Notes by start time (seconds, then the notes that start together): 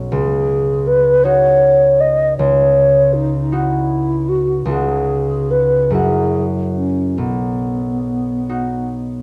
Already playing: B1 C#4 F#4
0.11 C#2 G#4
0.87 B4
1.23 D#4 F#4 C#5
2.00 D#5
2.37 C#2 C#5
3.13 D#4
3.52 D#4 E4 F#4
4.28 F#4
4.65 C#2 D#4 G#4
4.71 F#4
5.50 B4
5.90 F#2 E4 G#4
5.95 F#4
6.75 C#4
7.17 B1 B3
8.49 D#4 F#4